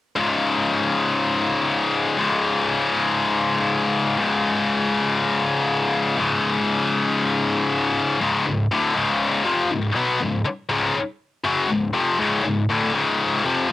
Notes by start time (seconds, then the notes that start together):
0.16 C#2 G#2 C#3
2.17 C#2 G#2 C#3
4.18 C#2 G#2 C#3
6.17 C#2 G#2 C#3
8.21 C#2 G#2 C#3
8.47 C#2 G#2
8.72 D2 A2 D3
8.95 C#2 G#2 C#3
9.44 F2 C3 F3
9.70 C#2 G#2
9.95 B2 F#3 B3
10.20 C#2 G#2
10.45 muted distorted electric guitar stroke
10.69 C#2 G#2 C#3
11.44 F#2 C#3 F#3
11.69 C#2 G#2
11.93 F2 C3 F3
12.18 C#2 G#2 C#3
12.43 C#2 G#2
12.69 D2 A2 D3
12.93 C#2 G#2 C#3
13.44 F2 C3 F3